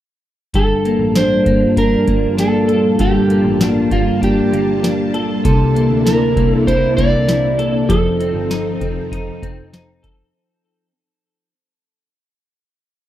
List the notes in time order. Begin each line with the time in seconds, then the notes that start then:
0.54 G1 G2 G3 A#3 F4 A4 A5, kick, closed hi-hat
0.85 A#3, closed hi-hat
0.99 A1
1.15 D4 C5, snare, closed hi-hat
1.45 G1 A#3, kick, closed hi-hat
1.77 D4 A#4, kick, closed hi-hat
2.07 G1 A#3, kick, closed hi-hat
2.37 D4 A4, snare, closed hi-hat
2.68 A4, closed hi-hat
2.99 G1 G2 G4 A4, kick, closed hi-hat
3.30 A#3, closed hi-hat
3.45 A1
3.61 D4, snare, closed hi-hat
3.68 F4
3.91 G1 A#3 F4, kick, closed hi-hat
4.21 D4 G4, kick, closed hi-hat
4.52 G1 A#3, closed hi-hat
4.83 D4, snare, closed hi-hat
5.14 A4, closed hi-hat
5.44 C2 C3 A#3 D4 E4 A4, kick, closed hi-hat
5.76 A#3, closed hi-hat
5.90 D2
6.06 E4 A#4, snare, closed hi-hat
6.36 C2 A#3, kick, closed hi-hat
6.51 A4
6.67 E4 C5, kick, closed hi-hat
6.97 C2 A#3 D5, kick, closed hi-hat
7.28 E4, snare, closed hi-hat
7.59 A4, closed hi-hat
7.89 F1 F3 C4 D#4 A4, kick, closed hi-hat
8.20 C4, closed hi-hat
8.34 G1
8.50 D#4, snare, closed hi-hat
8.81 F1 C4, kick, closed hi-hat
9.12 D#4, kick, closed hi-hat
9.43 F1 C4, kick, closed hi-hat
9.73 D#4, snare, closed hi-hat
10.03 A4, kick, closed hi-hat